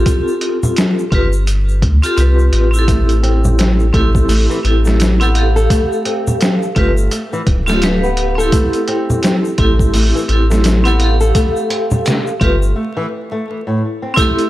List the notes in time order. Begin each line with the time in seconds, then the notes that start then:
Already playing: C4 F4 G4 A4
0.06 kick, closed hi-hat, shaker
0.28 shaker
0.41 closed hi-hat
0.63 low conga, shaker
0.76 snare, closed hi-hat, shaker
0.99 shaker
1.11 G1 C4 F4 G4, kick, closed hi-hat
1.15 B4
1.33 shaker
1.47 closed hi-hat, shaker
1.69 shaker
1.82 D2, kick, closed hi-hat
2.02 C4 F4 G4 A4, closed hi-hat, shaker
2.17 C2 C4 F4 G4 B4, closed hi-hat, shaker
2.39 shaker
2.52 A1, closed hi-hat
2.71 C4 E4, shaker
2.76 G4 A4
2.88 A3, kick, closed hi-hat, shaker
3.09 closed hi-hat, shaker
3.23 C4, closed hi-hat
3.44 low conga, shaker
3.58 C4, snare, closed hi-hat, shaker
3.80 shaker
3.93 A1 A3 C4 E4 G4 A4, kick, closed hi-hat
4.15 kick, shaker
4.29 A1 A3, open hi-hat, shaker
4.50 E3, shaker
4.63 A1 C4 E4 G4 A4, closed hi-hat
4.85 A3, snare, shaker
5.00 snare, closed hi-hat, shaker
5.20 B3 C4 E4 G4 A4, closed hi-hat, shaker
5.34 G4 F5, closed hi-hat
5.39 A4
5.56 A4, shaker
5.70 A3, kick, closed hi-hat, shaker
5.92 shaker
6.05 C4, closed hi-hat
6.27 low conga, shaker
6.41 C4, snare, closed hi-hat, shaker
6.62 shaker
6.75 G1 A3 C4 F4 G4 B4, kick, closed hi-hat
6.97 shaker
7.11 A3, closed hi-hat, shaker
7.33 E3, shaker
7.47 D1, kick, closed hi-hat
7.66 A3 C4 F4 G4 A4, snare, shaker
7.82 G4 B4 F5, snare, closed hi-hat, shaker
8.03 B3, shaker
8.17 closed hi-hat
8.35 C4 E4 A4
8.39 G4 A4, shaker
8.52 A3, kick, closed hi-hat, shaker
8.73 closed hi-hat, shaker
8.88 C4, closed hi-hat
9.10 low conga, shaker
9.23 C4, snare, closed hi-hat, shaker
9.45 shaker
9.58 A1 A3 C4 E4 G4 A4, kick, closed hi-hat
9.79 kick, shaker
9.94 A1 A3, open hi-hat, shaker
10.15 E3, shaker
10.28 A1 C4 E4 G4, closed hi-hat
10.32 A4
10.50 A3, snare, shaker
10.64 snare, closed hi-hat, shaker
10.84 B3 C4 E4 G4 A4, closed hi-hat, shaker
10.99 G4 F5, closed hi-hat
11.04 A4
11.21 A4, shaker
11.35 A3, kick, closed hi-hat, shaker
11.56 shaker
11.70 C4, closed hi-hat
11.91 low conga, shaker
12.05 C4, snare, closed hi-hat, shaker
12.27 shaker
12.40 G1 A3 C4 F4 G4 B4, kick, closed hi-hat
12.62 shaker
12.76 A3
12.97 E3
13.32 A3
13.67 A2
14.02 C4
14.14 A3 C4 E4, kick, closed hi-hat
14.18 G4 A4, shaker
14.39 closed hi-hat, shaker